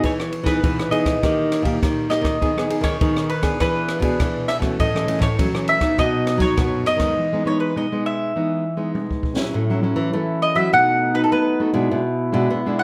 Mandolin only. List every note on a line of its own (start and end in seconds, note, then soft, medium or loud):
0.05 0.46 C#5 medium
0.46 0.91 B4 medium
0.91 1.77 D#5 medium
2.10 2.83 D#5 medium
2.83 3.29 C#5 medium
3.30 3.60 B4 medium
3.61 4.46 B4 medium
4.48 4.56 E5 loud
4.80 5.22 D#5 medium
5.22 5.69 C#5 medium
5.69 5.96 E5 loud
5.99 6.40 D#5 medium
6.42 6.83 C#5 loud
6.87 7.42 D#5 medium
7.47 7.60 C#5 medium
7.60 7.76 B4 medium
7.77 8.04 D#5 medium
8.06 8.91 E5 medium
10.42 10.56 D#5 medium
10.56 10.72 E5 medium
10.73 11.15 F#5 loud
11.15 11.23 B4 medium
11.24 11.31 A4 medium
11.32 11.60 B4 medium
12.79 12.83 F#5 medium